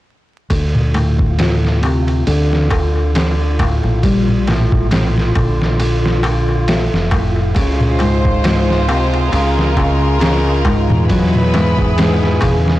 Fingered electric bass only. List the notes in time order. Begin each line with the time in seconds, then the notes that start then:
0.51 D2
2.27 D2
3.85 A#1
5.36 A#1
6.93 F1
7.56 C#2
9.33 C#2
10.90 E2
12.42 E2